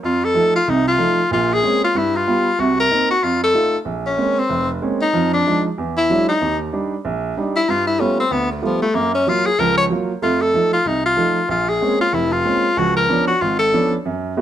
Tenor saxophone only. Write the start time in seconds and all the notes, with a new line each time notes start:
0.05 F4
0.25 A4
0.56 F4
0.69 D#4
0.88 F4
1.33 F4
1.54 G#4
1.84 F4
1.98 E4
2.16 F4
2.60 F#4
2.80 A#4
3.11 F#4
3.24 F4
3.44 A4
4.06 C#4
4.39 C4
5.02 D#4
5.34 D4
5.98 E4
6.29 D#4
7.56 E4
7.69 F4
7.87 E4
8.01 C#4
8.20 C4
8.32 B3
8.51 D3
8.65 F3
8.82 A3
8.95 A#3
9.15 C#4
9.29 F4
9.46 G#4
9.59 A#4
9.77 C#5
10.23 F4
10.41 A4
10.73 F4
10.87 D#4
11.06 F4
11.51 F4
11.69 G#4
12.01 F4
12.14 E4
12.32 F4
12.79 F#4
12.97 A#4
13.28 F#4
13.42 F4
13.59 A4